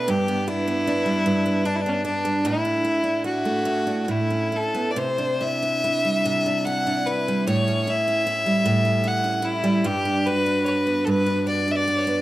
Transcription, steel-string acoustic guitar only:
X:1
M:3/4
L:1/16
Q:1/4=74
K:Amix
V:1 name="Steel-string acoustic guitar"
G,, B, D B, D G, G,, B, D B, D G, | A,, D E D E A, A,, D A,, C E B, | =C, D E D E G, C, D E D E G, | A,, C E C E G, A,, C E C E G, |
G,, D F D F B, G,, D F D F B, |]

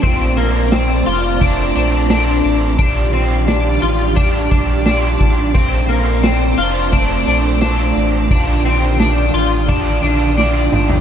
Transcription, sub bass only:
X:1
M:4/4
L:1/8
Q:1/4=87
K:Bb
V:1 name="Sub bass" clef=bass
B,,,3 F,,,2 B,,,2 A,,, | B,,,3 A,,,2 B,,,2 A,,, | B,,,3 F,,,2 B,,,2 A,,, | B,,,3 A,,,2 B,,,2 A,,, |]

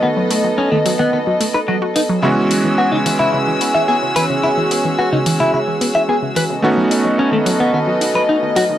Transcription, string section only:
X:1
M:4/4
L:1/8
Q:1/4=109
K:E
V:1 name="String section"
[B,Ad]8 | [CFGe']8- | [CFGe']8 | [B,Ad]8 |]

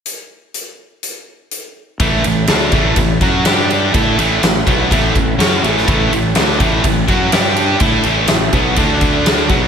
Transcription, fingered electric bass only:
X:1
M:4/4
L:1/8
Q:1/4=124
K:Amix
V:1 name="Fingered electric bass" clef=bass
z8 | A,,, A,,, D,, A,,, A,,, F,, G,,2 | A,, A,,, A,,, B,,, A,,, A,,, F,, A,,, | A,,, A,,, D,, A,,, A,,, F,, G,,2 |
A,, A,,, A,,, B,,, D,,3 B,,, |]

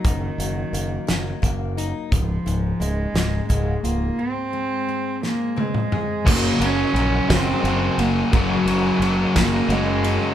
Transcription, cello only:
X:1
M:6/8
L:1/8
Q:3/8=58
K:Gblyd
V:1 name="Cello"
E,4 z2 | F,2 A,2 A, B, | C3 B, A,2 | B, D2 C2 B, |
G,3 B, A,2 |]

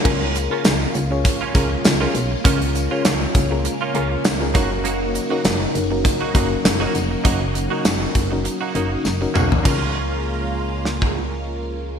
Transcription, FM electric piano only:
X:1
M:4/4
L:1/16
Q:"Swing 16ths" 1/4=100
K:Db
V:1 name="FM electric piano"
[DFAB]2 z [DFAB]3 z [DFAd]2 z [DFAB]2 z [DFAB]2 z | [DFAB]2 z [DFAd]3 z [DFAB]2 z [DFAB]2 z [DFAB] [DEGB]2- | [DEGB]2 z [DEGB]3 z [DEGB]2 z [DEGB]2 z [DEGB]2 z | [DEGB]2 z [DEGB]3 z [DEGB]2 z [DEGB]2 z [DEGB]2 z |
[DFAB]16 |]
V:2 name="FM electric piano" clef=bass
D,6 z8 z2 | D,6 z8 z2 | z16 | z16 |
D,,16 |]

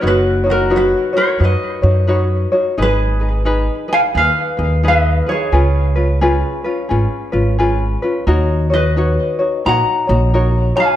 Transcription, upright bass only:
X:1
M:4/4
L:1/16
Q:"Swing" 1/4=87
K:F#
V:1 name="Upright bass" clef=bass
F,,,8 F,, z F,,6 | G,,,8 D,, z D,,6 | C,,8 G,,, z G,,,6 | D,,8 A,,, z A,,,6 |]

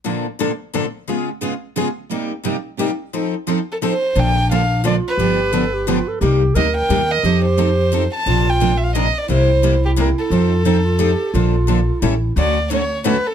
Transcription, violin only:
X:1
M:3/4
L:1/16
Q:"Swing" 1/4=175
K:Bb
V:1 name="Violin"
z12 | z12 | z12 | z6 A2 c4 |
g4 f4 d2 _c2- | _c8- c2 z2 | z4 e2 g4 e2- | e2 c8 a2- |
a2 g3- g/2 =e/2 f2 _e2 d2 | c6 G2 B2 A2- | A12- | A8 z4 |
[K:D] d4 c4 B2 A2 |]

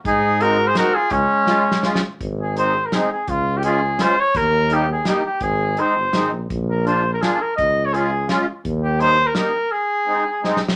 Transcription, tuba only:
X:1
M:3/4
L:1/8
Q:"Swing" 1/4=168
K:Db
V:1 name="Tuba" clef=bass
A,,6 | D,, z4 z | [K:Ab] A,,,6 | D,,6 |
E,,6 | A,,,3 G,,, A,,, B,,, | B,,,6 | D,,6 |
E,,6 | z6 |]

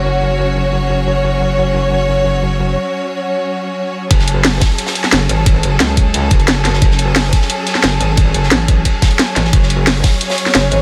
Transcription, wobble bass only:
X:1
M:4/4
L:1/8
Q:1/4=177
K:F#m
V:1 name="Wobble bass" clef=bass
F,,,8- | F,,,8 | z8 | F,,,3 z3 F,,, G,,,- |
G,,, F,,, C,,3 F,,,3 | z6 F,,, G,,,- | G,,, F,,, A,,,2 z3 A,,, | F,,,3 z3 F,,, G,,, |]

